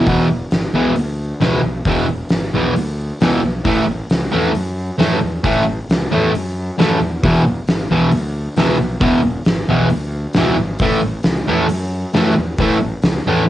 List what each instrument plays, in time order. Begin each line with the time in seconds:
0.06 fingered electric bass E1, distorted electric guitar E2 B2 E3, kick, open hi-hat
0.51 fingered electric bass G#1, snare, open hi-hat
0.73 fingered electric bass B1, distorted electric guitar E2 B2 E3
0.96 fingered electric bass D2, open hi-hat
1.40 fingered electric bass C#2, distorted electric guitar E2 B2 E3, snare, open hi-hat
1.65 fingered electric bass B1
1.85 fingered electric bass E1, distorted electric guitar E2 B2 E3, kick, open hi-hat
2.29 fingered electric bass G#1, snare, open hi-hat
2.54 fingered electric bass B1, distorted electric guitar E2 B2 E3
2.76 fingered electric bass D2, open hi-hat
3.21 fingered electric bass C#2, distorted electric guitar E2 B2 E3, snare, open hi-hat
3.42 fingered electric bass B1
3.64 fingered electric bass A1, distorted electric guitar A2 E3 A3, kick, open hi-hat
4.10 fingered electric bass C#2, snare, open hi-hat
4.32 fingered electric bass E2, distorted electric guitar A2 E3 A3
4.55 fingered electric bass F#2, open hi-hat
4.98 fingered electric bass F#2, distorted electric guitar A2 E3 A3, snare, open hi-hat
5.23 fingered electric bass E2
5.44 fingered electric bass A1, distorted electric guitar A2 E3 A3, kick, open hi-hat
5.89 fingered electric bass C#2, snare, open hi-hat
6.11 fingered electric bass E2, distorted electric guitar A2 E3 A3
6.35 fingered electric bass F#2, open hi-hat
6.78 fingered electric bass F#2, distorted electric guitar A2 E3 A3, snare, open hi-hat
7.01 fingered electric bass E2
7.23 fingered electric bass E1, distorted electric guitar E2 B2 E3, kick, open hi-hat
7.67 fingered electric bass G#1, snare, open hi-hat
7.90 fingered electric bass B1, distorted electric guitar E2 B2 E3
8.11 fingered electric bass D2, open hi-hat
8.56 fingered electric bass C#2, distorted electric guitar E2 B2 E3, snare, open hi-hat
8.80 fingered electric bass B1
9.01 fingered electric bass E1, distorted electric guitar E2 B2 E3, kick, open hi-hat
9.45 fingered electric bass G#1, snare, open hi-hat
9.68 fingered electric bass B1, distorted electric guitar E2 B2 E3
9.90 fingered electric bass D2, open hi-hat
10.33 fingered electric bass C#2, distorted electric guitar E2 B2, snare, open hi-hat
10.38 distorted electric guitar E3
10.58 fingered electric bass G#1
10.79 fingered electric bass A1, distorted electric guitar A2 E3 A3, kick, open hi-hat
11.23 fingered electric bass C#2, snare, open hi-hat
11.48 fingered electric bass E2, distorted electric guitar A2 E3 A3
11.69 fingered electric bass F#2, open hi-hat
12.13 fingered electric bass F#2, distorted electric guitar A2 E3 A3, snare, open hi-hat
12.38 fingered electric bass E2
12.58 fingered electric bass A1, distorted electric guitar A2 E3 A3, kick, open hi-hat
13.02 fingered electric bass C#2, snare, open hi-hat
13.26 fingered electric bass E2, distorted electric guitar A2 E3 A3